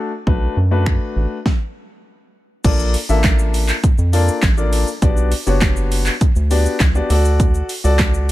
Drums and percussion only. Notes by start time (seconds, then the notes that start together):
0.27 kick
0.86 finger snap, kick
1.46 kick, snare
2.65 kick, closed hi-hat, crash, shaker
2.79 shaker
2.94 open hi-hat, shaker
3.09 shaker
3.24 kick, snare, clap, closed hi-hat, shaker
3.39 shaker
3.54 open hi-hat, shaker
3.68 clap, shaker
3.84 kick, closed hi-hat, shaker
3.98 shaker
4.13 open hi-hat, shaker
4.28 shaker
4.43 kick, snare, clap, closed hi-hat, shaker
4.58 shaker
4.73 open hi-hat, shaker
4.87 shaker
5.02 kick, closed hi-hat, shaker
5.17 shaker
5.32 open hi-hat, shaker
5.47 shaker
5.61 kick, snare, clap, closed hi-hat, shaker
5.76 shaker
5.92 open hi-hat, shaker
6.06 clap, shaker
6.21 kick, closed hi-hat, shaker
6.36 shaker
6.51 open hi-hat, shaker
6.66 shaker
6.80 kick, snare, clap, closed hi-hat, shaker
6.95 shaker
7.10 open hi-hat, shaker
7.25 shaker
7.40 kick, closed hi-hat, shaker
7.55 shaker
7.69 open hi-hat, shaker
7.84 shaker
7.99 kick, snare, clap, closed hi-hat, shaker
8.14 shaker